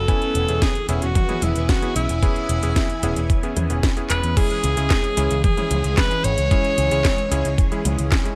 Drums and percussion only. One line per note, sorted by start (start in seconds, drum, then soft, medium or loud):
0.08 kick loud
0.08 closed hi-hat medium
0.22 closed hi-hat soft
0.35 closed hi-hat medium
0.48 closed hi-hat soft
0.62 kick loud
0.62 snare loud
0.62 closed hi-hat medium
0.75 closed hi-hat soft
0.89 closed hi-hat medium
1.02 closed hi-hat medium
1.15 kick loud
1.15 closed hi-hat medium
1.15 high tom medium
1.29 closed hi-hat soft
1.29 high tom medium
1.42 closed hi-hat medium
1.42 high tom medium
1.56 closed hi-hat soft
1.69 kick loud
1.69 snare loud
1.69 closed hi-hat medium
1.82 closed hi-hat soft
1.96 closed hi-hat medium
2.09 closed hi-hat medium
2.23 kick loud
2.23 closed hi-hat medium
2.36 closed hi-hat soft
2.49 closed hi-hat medium
2.63 closed hi-hat soft
2.76 kick loud
2.76 snare loud
2.76 closed hi-hat medium
2.90 closed hi-hat soft
3.03 closed hi-hat medium
3.16 closed hi-hat medium
3.30 kick loud
3.30 closed hi-hat medium
3.43 closed hi-hat soft
3.57 closed hi-hat medium
3.57 high tom medium
3.70 closed hi-hat medium
3.83 kick loud
3.83 snare loud
3.83 closed hi-hat medium
3.97 closed hi-hat soft
4.10 clap medium
4.10 closed hi-hat medium
4.23 closed hi-hat medium
4.37 kick loud
4.37 closed hi-hat medium
4.37 crash loud
4.50 closed hi-hat soft
4.64 closed hi-hat loud
4.77 closed hi-hat medium
4.90 kick loud
4.90 snare loud
4.90 clap medium
4.90 closed hi-hat medium
5.04 closed hi-hat soft
5.17 closed hi-hat loud
5.31 closed hi-hat medium
5.44 kick loud
5.44 closed hi-hat medium
5.44 high tom medium
5.57 closed hi-hat soft
5.57 high tom medium
5.71 closed hi-hat loud
5.71 high tom medium
5.84 closed hi-hat medium
5.97 kick loud
5.97 snare loud
5.97 clap medium
5.97 closed hi-hat medium
6.11 closed hi-hat soft
6.24 closed hi-hat medium
6.38 closed hi-hat medium
6.51 kick loud
6.51 closed hi-hat medium
6.64 closed hi-hat soft
6.78 closed hi-hat medium
6.91 closed hi-hat medium
7.05 kick loud
7.05 snare loud
7.05 clap medium
7.05 closed hi-hat medium
7.18 closed hi-hat soft
7.32 closed hi-hat loud
7.45 closed hi-hat medium
7.58 kick loud
7.58 closed hi-hat medium
7.72 closed hi-hat soft
7.85 closed hi-hat medium
7.85 high tom medium
7.99 closed hi-hat medium
8.12 kick loud
8.12 snare loud
8.12 clap medium
8.12 closed hi-hat medium
8.25 closed hi-hat soft